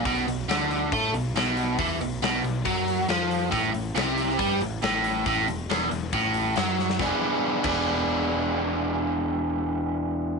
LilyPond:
<<
  \new Staff \with { instrumentName = "Overdriven electric guitar" } { \clef bass \time 4/4 \key e \mixolydian \tempo 4 = 138 b,8 b,8 d4 a8 b,8 b,4 | e8 b,8 b,8 b,8 fis4 f4 | a,8 a,8 c4 g8 a,8 a,4 | a,8 e,8 e,8 e,8 a,4 fis4 |
<e b d' gis'>8 r4 <e b d' gis'>2~ <e b d' gis'>8~ | <e b d' gis'>1 | }
  \new Staff \with { instrumentName = "Picked electric bass" } { \clef bass \time 4/4 \key e \mixolydian b,,8 b,,8 d,4 a,8 b,,8 b,,4 | e,8 b,,8 b,,8 b,,8 fis,4 f,4 | a,,8 a,,8 c,4 g,8 a,,8 a,,4 | a,,8 e,,8 e,,8 e,,8 a,,4 fis,4 |
e,,8 r4 e,,2~ e,,8~ | e,,1 | }
  \new DrumStaff \with { instrumentName = "Drums" } \drummode { \time 4/4 <hho bd>8 hho8 <hho sn>8 hho8 <hho bd>8 hho8 <hho sn>8 hho8 | <hho bd>8 hho8 <hho sn>8 hho8 <hho bd>8 hho8 <hho sn>8 hho8 | <hho bd>8 hho8 <hho sn>8 hho16 sn16 <hho bd>8 hho8 <hho sn>8 hho8 | <hho bd>8 hho8 <hho sn>8 hho8 <hho bd>8 hho8 <hho sn>8 sn16 sn16 |
<bd sn>4 r8 <cymc bd>8 r4 r4 | r4 r4 r4 r4 | }
>>